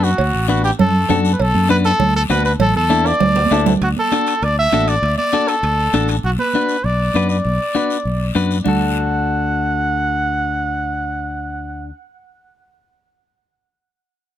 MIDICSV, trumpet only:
0, 0, Header, 1, 2, 480
1, 0, Start_track
1, 0, Key_signature, 2, "major"
1, 0, Tempo, 303030
1, 298, Time_signature, 4, 2, 24, 8
1, 22776, End_track
2, 0, Start_track
2, 0, Title_t, "Trumpet"
2, 0, Program_c, 0, 56
2, 64, Note_on_c, 0, 66, 83
2, 775, Note_off_c, 0, 66, 0
2, 785, Note_on_c, 0, 66, 84
2, 1004, Note_off_c, 0, 66, 0
2, 1021, Note_on_c, 0, 67, 95
2, 1127, Note_off_c, 0, 67, 0
2, 1271, Note_on_c, 0, 69, 89
2, 1932, Note_off_c, 0, 69, 0
2, 2100, Note_on_c, 0, 71, 66
2, 2234, Note_on_c, 0, 69, 98
2, 2258, Note_off_c, 0, 71, 0
2, 2690, Note_off_c, 0, 69, 0
2, 2699, Note_on_c, 0, 71, 97
2, 2805, Note_off_c, 0, 71, 0
2, 2932, Note_on_c, 0, 69, 107
2, 3377, Note_off_c, 0, 69, 0
2, 3424, Note_on_c, 0, 69, 92
2, 3529, Note_off_c, 0, 69, 0
2, 3655, Note_on_c, 0, 71, 93
2, 3875, Note_off_c, 0, 71, 0
2, 3889, Note_on_c, 0, 71, 86
2, 3997, Note_off_c, 0, 71, 0
2, 4136, Note_on_c, 0, 69, 103
2, 4355, Note_off_c, 0, 69, 0
2, 4380, Note_on_c, 0, 69, 90
2, 4853, Note_on_c, 0, 74, 103
2, 4877, Note_off_c, 0, 69, 0
2, 5808, Note_off_c, 0, 74, 0
2, 6066, Note_on_c, 0, 66, 86
2, 6169, Note_off_c, 0, 66, 0
2, 6320, Note_on_c, 0, 69, 90
2, 7025, Note_on_c, 0, 74, 91
2, 7049, Note_off_c, 0, 69, 0
2, 7254, Note_off_c, 0, 74, 0
2, 7269, Note_on_c, 0, 76, 108
2, 7741, Note_on_c, 0, 74, 100
2, 7764, Note_off_c, 0, 76, 0
2, 8196, Note_off_c, 0, 74, 0
2, 8206, Note_on_c, 0, 74, 90
2, 8685, Note_on_c, 0, 69, 103
2, 8709, Note_off_c, 0, 74, 0
2, 9644, Note_off_c, 0, 69, 0
2, 9892, Note_on_c, 0, 66, 89
2, 9998, Note_off_c, 0, 66, 0
2, 10127, Note_on_c, 0, 71, 88
2, 10842, Note_on_c, 0, 74, 93
2, 10865, Note_off_c, 0, 71, 0
2, 11554, Note_off_c, 0, 74, 0
2, 11564, Note_on_c, 0, 74, 82
2, 13182, Note_off_c, 0, 74, 0
2, 13723, Note_on_c, 0, 78, 80
2, 18776, Note_off_c, 0, 78, 0
2, 22776, End_track
0, 0, End_of_file